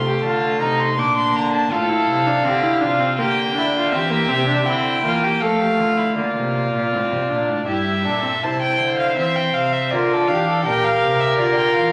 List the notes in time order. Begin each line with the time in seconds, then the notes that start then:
Already playing: C3 A3 C6
0.06 G4
0.23 D3 F4 A5
0.60 C3 D#4 A#5
0.80 C6
0.97 A#2 A#3 D4 D6
1.17 C6
1.35 D3 A#5
1.53 A5
1.71 A2 F4 A4 F5
1.89 E4
2.09 C3
2.27 D4
2.45 D3 C4 G4
2.63 E4
2.81 C3 D4 F4
3.00 C4
3.18 D3 A#3 G4 G5
3.56 D4 E4
3.77 F4
3.92 E3 C4 G4 E5
4.10 A#3
4.29 C3 C4
4.48 D4
4.66 D3 C4 E4 G5
5.04 E3 A#3 F4
5.24 G4
5.41 F3 A3 A4 F5
5.60 G4
5.79 D3 F4
5.97 E4
6.15 D3 A#3 F4 D5
6.35 C3
6.73 A#2
6.92 A2 C4
7.11 C3
7.29 A#2 D4
7.49 A2
7.67 G2 E4 G4 E5
8.04 A#2 D4 A4
8.23 C4
8.42 C3 E4 C5 A5
8.62 G5
8.79 D3
8.99 F5
9.17 E3 C4 E5
9.36 G5
9.54 C3 F5
9.72 E5
9.91 D3 F4 A#4 D5
10.12 A4
10.27 E3 D4 F5
10.32 G4
10.49 A4
10.65 A#2 G4 A#4 G5
10.84 F5
11.02 C3
11.20 E5
11.38 D3 F4 D5
11.55 G5
11.74 E3 F5